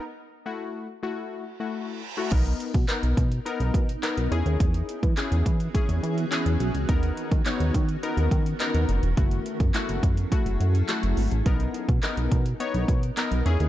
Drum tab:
CC |----------------|x---------------|----------------|----------------|
HH |----------------|xxxxxxxxxxxxxxxx|xxxxxxxxxxxxxxxx|xxxxxxxxxxxxxxxx|
CP |----------------|----x-------x---|----x-------x---|----x-------x---|
BD |----------------|o--o--o---o-----|o--o--o-o-------|o--o--o---o-----|

CC |----------------|----------------|
HH |xxxxxxxxxxxxxxox|xxxxxxxxxxxxxxxx|
CP |----x-------x---|----x-------x---|
BD |o--o--o-o-------|o--o--o---o-----|